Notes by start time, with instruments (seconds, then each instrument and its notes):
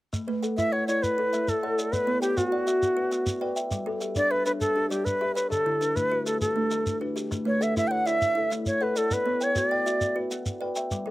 0.13 kalimba A3, shekere
0.27 kalimba A3 B4
0.43 kalimba A4 F#5, shekere
0.57 kalimba E4, native american-style wooden flute E5, shekere
0.72 native american-style wooden flute C#5, kalimba C#5 F#5
0.87 kalimba E4 D5, native american-style wooden flute C#5, shekere
1.03 native american-style wooden flute B4, shekere
1.18 kalimba E4 A4
1.33 kalimba A3 E5, shekere
1.48 native american-style wooden flute A4, shekere
1.63 kalimba A4 C#5 F#5
1.78 kalimba D5, shekere
1.92 kalimba B3, native american-style wooden flute B4, shekere
2.07 kalimba B3 C#5
2.22 native american-style wooden flute G4, kalimba B4 G5, shekere
2.37 kalimba F#4, native american-style wooden flute F#4, shekere
2.52 kalimba D5 F#5
2.67 kalimba F#4 E5, shekere
2.83 shekere
2.97 kalimba F#4 B4
3.11 kalimba B3 F#5, shekere
3.26 shekere
3.41 kalimba B4 D5 G5
3.56 kalimba E5 G5, shekere
3.71 kalimba G3, shekere
3.86 kalimba G3 A4
4.01 kalimba G4 E5, shekere
4.16 kalimba D4, native american-style wooden flute D5, shekere
4.31 kalimba B4 E5, native american-style wooden flute B4
4.46 kalimba D4 C#5, native american-style wooden flute B4, shekere
4.60 native american-style wooden flute A4, shekere
4.76 kalimba D4 G4
4.90 kalimba G3 D5, native american-style wooden flute G4, shekere
5.05 native american-style wooden flute B4, shekere
5.21 kalimba G4 B4 E5
5.35 native american-style wooden flute B4, kalimba C#5 E5, shekere
5.50 kalimba D3, native american-style wooden flute A4, shekere
5.66 kalimba D3 E4
5.81 kalimba D4 B4, shekere
5.96 kalimba A3, native american-style wooden flute B4, shekere
6.11 kalimba F#4 B4
6.26 kalimba A3 G4, native american-style wooden flute A4, shekere
6.41 native american-style wooden flute A4, shekere
6.56 kalimba A3 D4
6.71 kalimba D3 A4, shekere
6.86 shekere
7.01 kalimba D4 F#4 B4
7.16 kalimba G4 B4, shekere
7.31 kalimba A3, shekere
7.45 kalimba A3 B4, native american-style wooden flute C#5
7.61 kalimba A4 F#5, native american-style wooden flute E5, shekere
7.77 kalimba E4, native american-style wooden flute E5, shekere
7.88 kalimba C#5 F#5, native american-style wooden flute F#5 G5
8.06 kalimba E4 D5, native american-style wooden flute E5, shekere
8.22 shekere
8.35 kalimba E4 A4
8.50 kalimba A3 E5, shekere
8.66 native american-style wooden flute C#5, shekere
8.81 kalimba A4 C#5 F#5, native american-style wooden flute B4
8.96 native american-style wooden flute A4, kalimba D5 F#5, shekere
9.11 kalimba B3, native american-style wooden flute B4, shekere
9.26 kalimba B3 C#5
9.41 kalimba B4 G5, native american-style wooden flute C#5, shekere
9.56 kalimba F#4, native american-style wooden flute C#5, shekere
9.70 native american-style wooden flute D5, kalimba D5 G5
9.86 kalimba F#4 E5, shekere
10.01 shekere
10.16 kalimba F#4 B4
10.31 kalimba B3 F#5, shekere
10.46 shekere
10.61 kalimba B4 D5 G5
10.76 kalimba E5 G5, shekere
10.91 kalimba G3, shekere
11.06 kalimba G3 A4